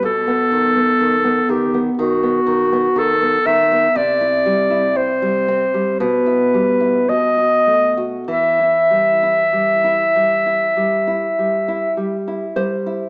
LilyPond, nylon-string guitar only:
\new Staff \with { instrumentName = "Nylon-string guitar" } { \time 4/4 \key e \minor \tempo 4 = 57 << { r1 | r1 | r2. r8 c''8 | } \\ { b,16 b16 dis16 b16 dis16 b16 dis16 b16 dis16 b16 dis16 b16 dis16 b16 dis16 b16 | c16 e'16 g16 e'16 c'16 g16 c'16 g16 b,16 e'16 g16 e'16 b,16 fis'16 a16 fis'16 | e16 e'16 g16 e'16 g16 e'16 g16 e'16 g16 e'16 g16 e'16 g16 e'16 g16 e'16 | } >> }